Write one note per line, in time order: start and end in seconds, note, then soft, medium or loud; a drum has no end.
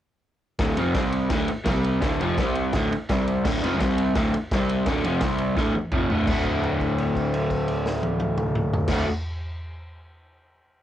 0.59 0.76 D1 medium
0.59 0.77 D2 loud
0.59 0.78 A2 medium
0.59 0.78 D3 loud
0.59 kick loud
0.59 snare loud
0.59 ride loud
0.77 0.94 F1 loud
0.77 0.94 F2 medium
0.77 0.93 C3 medium
0.77 0.96 F3 loud
0.77 ride medium
0.94 1.29 C2 medium
0.94 1.30 C3 medium
0.94 1.31 G3 medium
0.94 1.31 C4 loud
0.94 kick loud
0.94 snare loud
0.94 ride loud
1.12 ride medium
1.30 1.47 D1 loud
1.30 1.48 D2 loud
1.30 1.49 A2 medium
1.30 1.49 D3 loud
1.30 kick loud
1.30 snare loud
1.30 ride loud
1.48 muted overdriven electric guitar stroke medium
1.48 muted picked electric bass stroke soft
1.48 ride medium
1.64 2.00 C2 medium
1.64 2.01 C3 loud
1.64 2.01 G3 loud
1.64 2.01 C4 loud
1.64 kick loud
1.64 snare loud
1.64 ride loud
1.84 ride medium
2.01 2.19 D1 medium
2.01 2.19 D2 loud
2.01 2.19 A2 medium
2.01 2.20 D3 loud
2.01 kick loud
2.01 snare loud
2.01 ride loud
2.21 2.37 F1 medium
2.21 2.38 F2 medium
2.21 2.38 C3 medium
2.21 2.39 F3 loud
2.21 ride medium
2.38 2.71 C2 medium
2.38 2.74 C3 loud
2.38 2.74 G3 loud
2.38 2.75 C4 medium
2.38 kick loud
2.38 snare loud
2.38 ride loud
2.55 ride medium
2.73 2.90 D1 medium
2.73 2.91 D2 medium
2.73 2.92 A2 loud
2.73 2.92 D3 loud
2.73 kick loud
2.73 snare loud
2.73 ride medium
2.92 muted overdriven electric guitar stroke medium
2.92 muted picked electric bass stroke soft
2.92 ride medium
3.09 3.43 C2 medium
3.09 3.44 C3 medium
3.09 3.45 G3 loud
3.09 3.45 C4 loud
3.09 kick loud
3.09 snare loud
3.09 ride loud
3.27 ride medium
3.45 3.62 D1 medium
3.45 3.62 D2 loud
3.45 3.62 A2 loud
3.45 3.63 D3 loud
3.45 kick loud
3.45 snare loud
3.45 crash loud
3.63 3.80 F1 loud
3.63 3.80 F2 medium
3.63 3.80 C3 loud
3.63 3.81 F3 loud
3.63 ride medium
3.80 4.14 C2 medium
3.80 4.15 C3 medium
3.80 4.15 G3 loud
3.80 4.16 C4 medium
3.80 kick loud
3.80 snare loud
3.80 ride loud
3.98 ride medium
4.15 4.32 D1 medium
4.15 4.33 D2 loud
4.15 4.33 A2 loud
4.15 4.33 D3 loud
4.15 kick loud
4.15 snare loud
4.15 ride loud
4.34 muted overdriven electric guitar stroke medium
4.34 muted picked electric bass stroke soft
4.34 ride medium
4.51 4.84 C2 medium
4.51 4.87 C3 loud
4.51 4.87 G3 loud
4.51 4.88 C4 loud
4.51 kick loud
4.51 snare loud
4.51 ride loud
4.69 ride medium
4.86 5.03 D1 loud
4.86 5.04 D2 medium
4.86 5.05 A2 loud
4.86 5.05 D3 loud
4.86 kick loud
4.86 snare loud
4.86 ride loud
5.04 5.21 F1 loud
5.04 5.21 F2 medium
5.04 5.21 C3 medium
5.04 5.22 F3 loud
5.04 ride medium
5.21 5.55 C2 loud
5.21 5.56 C3 medium
5.21 5.57 G3 loud
5.21 5.58 C4 medium
5.21 kick loud
5.21 snare loud
5.21 ride loud
5.38 ride medium
5.56 5.73 D1 medium
5.56 5.74 D2 medium
5.56 5.75 A2 medium
5.56 5.75 D3 medium
5.56 kick loud
5.56 snare medium
5.75 muted overdriven electric guitar stroke medium
5.75 muted picked electric bass stroke soft
5.75 high tom medium
5.92 6.09 F1 loud
5.92 6.09 F2 medium
5.92 6.10 C3 medium
5.92 6.11 F3 medium
5.92 kick loud
5.92 mid tom medium
6.10 6.27 D1 medium
6.10 6.25 D2 medium
6.10 6.27 A2 loud
6.10 6.28 D3 loud
6.10 floor tom medium
6.27 8.81 D1 medium
6.27 8.88 D2 medium
6.27 8.88 A2 loud
6.27 8.89 D3 medium
6.27 8.91 A3 loud
6.27 kick loud
6.27 crash medium
6.31 8.91 F#4 loud
6.45 kick medium
6.45 crash soft
6.63 crash soft
6.80 kick medium
6.80 crash soft
6.98 crash soft
7.15 kick medium
7.15 crash soft
7.34 crash medium
7.50 kick medium
7.50 crash soft
7.68 crash medium
7.86 snare medium
8.03 high tom loud
8.20 high tom medium
8.38 mid tom loud
8.55 mid tom medium
8.73 floor tom loud
8.88 9.03 D1 medium
8.88 9.05 D2 medium
8.88 9.05 A2 loud
8.88 9.05 D3 medium
8.88 9.06 A3 loud
8.88 kick loud
8.88 snare loud
8.88 crash loud
8.92 9.06 F#4 loud